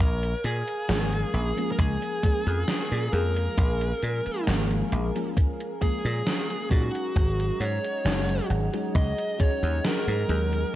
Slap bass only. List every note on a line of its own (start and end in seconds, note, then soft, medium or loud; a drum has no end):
0.00 0.33 A#1 medium
0.44 0.62 A#2 medium
0.89 1.23 G#1 medium
1.34 1.51 A#1 medium
1.79 1.96 C#2 medium
2.47 2.63 F2 medium
2.92 3.08 A#2 medium
3.13 3.47 F2 medium
3.58 3.92 A#1 loud
4.03 4.20 A#2 medium
4.27 muted slap bass stroke soft
4.48 4.81 G#1 medium
4.92 5.10 A#1 medium
6.05 6.21 A#2 medium
6.71 6.89 A#2 medium
7.16 7.50 G#1 loud
7.60 7.78 G#2 medium
8.05 8.39 F#1 medium
8.50 8.68 G#1 medium
8.95 9.12 C#2 medium
9.63 9.79 D#2 medium
10.08 10.24 G#2 medium
10.29 10.63 D#2 medium